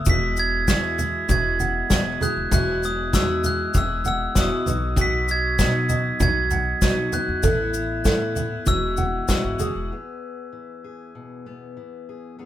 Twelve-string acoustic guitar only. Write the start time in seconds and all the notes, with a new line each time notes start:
0.06 E2 B2 F#3 G#3 B3 E4
0.37 F#3 G#3 B3 E4
0.68 E2 B2 F#3 G#3 B3 E4
0.98 F#3 G#3 B3 E4
1.29 F#3 G#3 B3 E4
1.91 E2 B2 F#3 G#3 B3 E4
2.20 F#3 G#3 B3 E4
2.51 E2 B2 F#3 G#3 B3 E4
2.82 F#3 G#3 B3 E4
3.13 E2 B2 F#3 G#3 B3 E4
3.44 F#3 G#3 B3 E4
3.74 F#3 G#3 B3 E4
4.35 E2 B2 F#3 G#3 B3 E4
4.67 B3 D#4 F#4
4.97 B2 F#3 B3 D#4 F#4
5.28 B3 D#4 F#4
5.59 B2 F#3 B3 D#4 F#4
5.88 B3 D#4 F#4
6.20 F#3 B3 D#4 F#4
6.82 B2 F#3 B3 D#4 F#4
7.12 B3 D#4 F#4
7.43 A2 E3 A3 B3 E4
7.73 A3 B3 E4
8.04 A2 E3 A3 B3 E4
8.35 A3 B3 E4
8.67 E3 G#3 B3 F#4
9.29 E2 B2 E3 G#3 B3 F#4
9.59 E3 G#3 B3 F#4